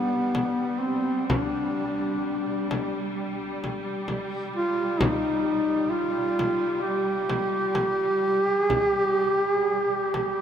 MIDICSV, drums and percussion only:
0, 0, Header, 1, 2, 480
1, 0, Start_track
1, 0, Tempo, 941915
1, 659, Time_signature, 4, 2, 24, 8
1, 1612, Tempo, 916031
1, 4012, Tempo, 955414
1, 5354, End_track
2, 0, Start_track
2, 0, Title_t, "Frame drum"
2, 177, Note_on_c, 9, 64, 59
2, 228, Note_off_c, 9, 64, 0
2, 661, Note_on_c, 9, 64, 71
2, 712, Note_off_c, 9, 64, 0
2, 1381, Note_on_c, 9, 64, 61
2, 1432, Note_off_c, 9, 64, 0
2, 1861, Note_on_c, 9, 64, 50
2, 1913, Note_off_c, 9, 64, 0
2, 2093, Note_on_c, 9, 64, 52
2, 2145, Note_off_c, 9, 64, 0
2, 2578, Note_on_c, 9, 64, 83
2, 2630, Note_off_c, 9, 64, 0
2, 3304, Note_on_c, 9, 64, 59
2, 3357, Note_off_c, 9, 64, 0
2, 3777, Note_on_c, 9, 64, 55
2, 3829, Note_off_c, 9, 64, 0
2, 4016, Note_on_c, 9, 64, 57
2, 4066, Note_off_c, 9, 64, 0
2, 4492, Note_on_c, 9, 64, 67
2, 4543, Note_off_c, 9, 64, 0
2, 5217, Note_on_c, 9, 64, 57
2, 5267, Note_off_c, 9, 64, 0
2, 5354, End_track
0, 0, End_of_file